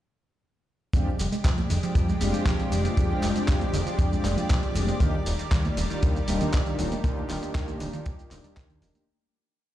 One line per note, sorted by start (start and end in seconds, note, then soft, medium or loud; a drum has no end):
0.93 1.10 F2 loud
0.93 0.99 D3 loud
0.93 1.08 G#3 loud
0.93 4.97 G#3 medium
0.93 1.08 C4 medium
0.93 1.09 D4 loud
0.93 1.09 F4 medium
0.93 4.97 G4 medium
0.93 1.09 G4 loud
0.93 9.04 D5 medium
0.93 kick loud
0.93 closed hi-hat medium
0.93 shaker medium
0.93 shaker soft
1.07 1.12 F3 medium
1.07 shaker soft
1.19 1.28 F1 medium
1.19 1.28 G3 medium
1.19 open hi-hat loud
1.19 shaker medium
1.32 1.38 G#3 medium
1.32 closed hi-hat medium
1.32 shaker soft
1.44 1.61 F2 medium
1.44 1.50 G3 loud
1.44 kick loud
1.44 clap loud
1.44 closed hi-hat medium
1.44 shaker soft
1.44 shaker medium
1.58 1.66 F3 medium
1.58 closed hi-hat soft
1.58 high conga medium
1.58 shaker soft
1.70 1.79 F1 medium
1.70 1.76 D3 medium
1.70 open hi-hat medium
1.70 shaker loud
1.70 shaker medium
1.83 1.92 F3 loud
1.83 2.05 G#3 medium
1.83 2.06 C4 medium
1.83 2.06 D4 medium
1.83 2.06 F4 medium
1.83 2.06 G4 medium
1.83 closed hi-hat medium
1.83 shaker soft
1.95 2.12 F2 loud
1.95 2.08 G3 loud
1.95 kick loud
1.95 closed hi-hat medium
1.95 shaker medium
1.95 shaker soft
2.08 2.21 G#3 medium
2.08 shaker soft
2.20 2.34 F1 medium
2.20 2.30 G3 loud
2.20 2.94 G#3 loud
2.20 2.94 C4 medium
2.20 2.94 D4 medium
2.20 2.95 F4 loud
2.20 2.95 G4 loud
2.20 open hi-hat loud
2.20 high conga medium
2.20 shaker medium
2.34 2.44 F2 soft
2.34 2.39 F3 medium
2.34 closed hi-hat medium
2.34 shaker soft
2.46 2.55 F2 medium
2.46 2.52 D3 loud
2.46 kick loud
2.46 clap loud
2.46 closed hi-hat medium
2.46 shaker medium
2.46 shaker soft
2.59 2.68 F3 medium
2.59 closed hi-hat soft
2.59 shaker soft
2.72 2.89 F1 medium
2.72 2.77 G3 medium
2.72 open hi-hat medium
2.72 low conga medium
2.72 shaker medium
2.85 2.94 G#3 medium
2.85 closed hi-hat medium
2.85 high conga medium
2.85 shaker soft
2.96 3.14 F2 loud
2.96 3.03 D3 loud
2.96 3.83 G#3 loud
2.96 3.83 C4 medium
2.96 3.84 D4 medium
2.96 3.84 F4 medium
2.96 3.84 G4 loud
2.96 kick loud
2.96 closed hi-hat medium
2.96 shaker soft
3.10 3.15 F3 medium
3.10 shaker soft
3.22 3.31 F1 medium
3.22 3.32 G3 medium
3.22 clap medium
3.22 open hi-hat loud
3.22 shaker medium
3.35 3.46 F2 soft
3.35 3.41 G#3 medium
3.35 closed hi-hat medium
3.35 shaker soft
3.48 3.65 F2 medium
3.48 3.54 G3 loud
3.48 kick loud
3.48 clap loud
3.48 closed hi-hat medium
3.48 shaker soft
3.48 shaker medium
3.61 3.70 F3 medium
3.61 closed hi-hat soft
3.61 high conga medium
3.61 shaker soft
3.73 3.82 F1 medium
3.73 3.79 D3 medium
3.73 open hi-hat loud
3.73 shaker medium
3.85 3.95 F3 loud
3.85 4.97 G#3 medium
3.85 4.97 C4 medium
3.85 4.98 D4 medium
3.85 4.98 F4 medium
3.85 4.98 G4 loud
3.85 closed hi-hat medium
3.85 shaker soft
3.98 4.16 F2 loud
3.98 4.11 G3 loud
3.98 kick loud
3.98 closed hi-hat medium
3.98 shaker medium
3.98 shaker soft
4.12 4.24 G#3 medium
4.12 shaker soft
4.24 4.37 F1 medium
4.24 4.33 G3 loud
4.24 clap medium
4.24 open hi-hat loud
4.24 high conga medium
4.24 shaker loud
4.24 shaker medium
4.37 4.47 F2 soft
4.37 4.42 F3 medium
4.37 closed hi-hat medium
4.37 shaker soft
4.49 4.59 F2 medium
4.49 4.55 D3 loud
4.49 kick loud
4.49 clap loud
4.49 closed hi-hat medium
4.49 shaker soft
4.62 4.71 F3 medium
4.62 closed hi-hat soft
4.62 shaker soft
4.75 4.92 F1 medium
4.75 4.80 G3 medium
4.75 open hi-hat loud
4.75 low conga medium
4.75 shaker loud
4.75 shaker medium
4.87 4.97 G#3 medium
4.87 closed hi-hat medium
4.87 high conga loud
4.87 shaker soft
5.00 5.17 D#2 loud
5.00 5.06 D3 loud
5.00 9.04 D#3 medium
5.00 9.04 G3 medium
5.00 5.15 A#3 loud
5.00 5.15 D4 loud
5.00 5.15 D#4 medium
5.00 5.15 F4 medium
5.00 5.15 G4 loud
5.00 kick loud
5.00 closed hi-hat medium
5.00 shaker medium
5.00 shaker soft
5.13 5.19 D#3 medium
5.13 shaker soft
5.26 5.35 D#1 medium
5.26 5.35 G3 medium
5.26 open hi-hat loud
5.26 shaker medium
5.39 5.44 A#3 medium
5.39 closed hi-hat medium
5.39 shaker soft
5.51 5.68 D#2 medium
5.51 5.57 G3 loud
5.51 kick loud
5.51 clap loud
5.51 closed hi-hat medium
5.51 shaker soft
5.65 5.73 D#3 medium
5.65 closed hi-hat soft
5.65 high conga loud
5.65 shaker soft
5.77 5.86 D#1 medium
5.77 5.82 D3 medium
5.77 open hi-hat loud
5.77 shaker loud
5.77 shaker medium
5.90 5.99 D#3 loud
5.90 6.12 A#3 medium
5.90 6.12 D4 medium
5.90 6.13 D#4 medium
5.90 6.13 F4 medium
5.90 6.13 G4 medium
5.90 closed hi-hat medium
5.90 shaker soft
6.03 6.19 D#2 loud
6.03 6.15 G3 loud
6.03 kick loud
6.03 closed hi-hat medium
6.03 shaker soft
6.03 shaker medium
6.15 6.27 A#3 medium
6.15 shaker soft
6.27 6.40 D#1 medium
6.27 6.37 G3 loud
6.27 7.01 A#3 loud
6.27 7.01 D4 medium
6.27 7.01 D#4 medium
6.27 7.01 F4 medium
6.27 7.02 G4 loud
6.27 open hi-hat loud
6.27 high conga medium
6.27 shaker medium
6.41 6.51 D#2 soft
6.41 6.46 D#3 medium
6.41 closed hi-hat medium
6.41 shaker soft
6.53 6.62 D#2 medium
6.53 6.59 D3 loud
6.53 kick loud
6.53 clap loud
6.53 closed hi-hat medium
6.53 shaker soft
6.53 shaker medium
6.66 6.75 D#3 medium
6.66 closed hi-hat soft
6.66 shaker soft
6.79 6.96 D#1 medium
6.79 6.84 G3 medium
6.79 open hi-hat loud
6.79 low conga medium
6.79 shaker medium
6.79 shaker loud
6.92 7.00 A#3 medium
6.92 closed hi-hat medium
6.92 high conga medium
6.92 shaker soft
7.03 7.21 D#2 medium
7.03 7.10 D3 loud
7.03 7.90 A#3 loud
7.03 7.90 D4 loud
7.03 7.90 D#4 medium
7.03 7.91 F4 medium
7.03 7.91 G4 loud
7.03 kick loud
7.03 closed hi-hat medium
7.03 shaker soft
7.03 shaker medium
7.17 7.22 D#3 medium
7.17 shaker soft
7.29 7.38 D#1 medium
7.29 7.39 G3 medium
7.29 clap medium
7.29 open hi-hat loud
7.29 shaker medium
7.42 7.53 D#2 soft
7.42 7.48 A#3 medium
7.42 closed hi-hat medium
7.42 shaker soft
7.55 7.72 D#2 medium
7.55 7.61 G3 loud
7.55 kick loud
7.55 clap loud
7.55 closed hi-hat medium
7.55 shaker medium
7.55 shaker soft
7.68 7.77 D#3 medium
7.68 closed hi-hat soft
7.68 high conga medium
7.68 shaker soft
7.80 7.89 D#1 loud
7.80 7.86 D3 medium
7.80 open hi-hat loud
7.80 shaker loud
7.80 shaker medium
7.92 8.02 D#3 loud
7.92 9.04 A#3 medium
7.92 9.04 D4 medium
7.92 9.05 D#4 medium
7.92 9.05 F4 medium
7.92 9.05 G4 loud
7.92 closed hi-hat soft
7.92 shaker soft
8.05 8.14 D#2 loud
8.05 8.18 G3 loud
8.05 kick loud
8.05 closed hi-hat medium
8.05 shaker soft
8.19 8.31 A#3 medium
8.19 shaker soft
8.31 8.40 D#1 medium
8.31 8.37 D3 medium
8.31 clap medium
8.31 open hi-hat loud
8.31 high conga medium
8.31 shaker medium
8.44 8.54 D#2 soft
8.44 8.50 G3 loud
8.44 closed hi-hat soft
8.44 shaker soft
8.56 8.83 D#2 medium
8.56 8.69 A#3 medium
8.56 kick loud
8.56 clap loud
8.56 closed hi-hat medium
8.56 shaker soft
8.70 8.81 D#3 loud
8.70 closed hi-hat soft
8.82 8.90 D#1 loud
8.82 8.91 A#3 loud
8.82 open hi-hat loud
8.82 low conga medium
8.82 shaker medium
8.95 9.04 D3 medium
8.95 closed hi-hat medium
8.95 high conga medium
8.95 shaker soft